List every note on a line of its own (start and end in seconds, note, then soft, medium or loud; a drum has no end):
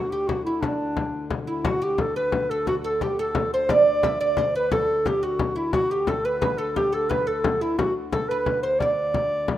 0.00 1.64 D2 medium
0.00 0.12 F#4 medium
0.00 0.13 F#4 medium
0.11 0.29 G4 medium
0.11 frame drum soft
0.28 0.44 F#4 medium
0.28 0.46 F#4 medium
0.28 frame drum medium
0.45 0.63 E4 medium
0.61 1.30 D4 medium
0.61 1.27 D4 medium
0.61 frame drum medium
0.80 frame drum soft
0.97 frame drum medium
1.14 frame drum soft
1.30 frame drum medium
1.47 1.65 E4 medium
1.47 1.67 E4 medium
1.65 5.71 D2 medium
1.65 1.81 F#4 medium
1.65 1.86 F#4 medium
1.65 frame drum medium
1.82 2.16 G4 medium
1.82 2.02 G4 medium
1.98 2.16 A4 medium
1.98 frame drum medium
2.16 2.51 B4 medium
2.16 2.52 B4 medium
2.16 frame drum soft
2.32 frame drum medium
2.50 2.67 A4 medium
2.50 2.68 A4 medium
2.67 2.85 F#4 medium
2.67 2.76 F#4 medium
2.67 frame drum medium
2.84 3.01 A4 medium
3.01 3.19 G4 medium
3.01 3.21 G4 medium
3.01 frame drum medium
3.18 3.53 A4 loud
3.18 3.53 A4 medium
3.18 frame drum soft
3.35 frame drum medium
3.54 3.70 C5 medium
3.54 3.73 C5 loud
3.69 4.01 D5 medium
3.69 4.20 D5 loud
3.69 frame drum medium
4.03 4.20 E5 medium
4.03 frame drum medium
4.21 4.52 D5 loud
4.21 4.38 D5 medium
4.21 frame drum soft
4.37 4.55 C5 medium
4.37 frame drum medium
4.55 4.71 B4 medium
4.72 5.07 A4 medium
4.72 5.09 A4 loud
4.72 frame drum medium
5.06 5.22 G4 medium
5.06 5.26 G4 medium
5.06 frame drum medium
5.23 5.55 F#4 medium
5.23 5.59 F#4 medium
5.23 frame drum soft
5.39 frame drum medium
5.56 5.74 E4 medium
5.56 5.73 E4 medium
5.56 frame drum soft
5.73 9.58 D2 medium
5.73 5.93 F#4 medium
5.73 5.90 F#4 medium
5.73 frame drum medium
5.91 6.09 G4 medium
5.91 6.10 G4 medium
6.07 6.24 A4 medium
6.07 6.27 A4 medium
6.07 frame drum medium
6.25 6.40 B4 medium
6.25 6.60 B4 medium
6.25 frame drum soft
6.42 6.58 B4 medium
6.42 frame drum medium
6.58 6.76 A4 medium
6.76 6.94 G4 medium
6.76 6.95 G4 medium
6.76 frame drum medium
6.92 7.09 A4 medium
6.92 7.12 A4 medium
7.09 7.26 B4 medium
7.09 7.29 B4 medium
7.09 frame drum medium
7.27 7.62 A4 medium
7.27 7.63 A4 medium
7.27 frame drum soft
7.44 frame drum medium
7.61 7.78 E4 medium
7.78 7.94 F#4 medium
7.78 frame drum medium
8.12 8.30 A4 medium
8.12 8.31 A4 medium
8.12 frame drum medium
8.29 8.62 B4 medium
8.29 frame drum soft
8.46 frame drum medium
8.62 8.81 C5 medium
8.80 9.58 D5 loud
8.80 9.58 D5 medium
8.80 frame drum medium
9.14 frame drum medium
9.31 frame drum soft
9.48 frame drum medium